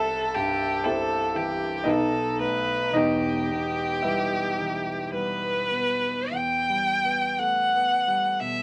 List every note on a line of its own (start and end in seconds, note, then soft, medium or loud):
0.00 1.82 C2 medium
0.00 0.36 A4 medium
0.00 0.80 A4 medium
0.00 0.81 E5 medium
0.00 0.84 A5 loud
0.34 1.15 G2 soft
0.34 0.85 G4 medium
0.84 1.31 C4 soft
0.84 1.31 E4 soft
0.84 1.83 G4 soft
0.84 1.37 A4 medium
0.84 1.83 E5 medium
0.84 1.86 G5 medium
1.35 1.86 E3 soft
1.35 1.91 G4 medium
1.84 2.91 B1 medium
1.84 2.90 D#4 medium
1.84 2.90 B4 medium
1.84 2.92 D#5 medium
1.89 2.41 A4 medium
2.39 2.90 A3 soft
2.39 2.90 B3 soft
2.39 2.98 B4 medium
2.93 6.27 E1 soft
2.93 6.27 E2 medium
2.93 4.00 D#4 medium
2.93 4.00 B4 medium
2.93 4.04 D#5 medium
2.97 5.14 G4 medium
3.50 4.37 B2 soft
4.02 4.54 G3 soft
4.02 4.54 B3 soft
4.02 5.08 E4 soft
4.02 5.08 B4 soft
4.02 5.12 E5 medium
4.59 5.47 E3 soft
5.12 5.67 G3 soft
5.12 5.68 B3 soft
5.12 6.35 B4 medium
5.71 6.31 B2 soft
6.31 8.63 E2 soft
6.31 7.40 G5 medium
6.70 7.25 G3 soft
7.04 7.59 B3 soft
7.39 7.73 A3 soft
7.39 8.42 F#5 medium
7.74 8.28 B3 soft
8.08 8.60 G3 soft
8.40 8.63 B2 soft
8.40 8.63 E5 medium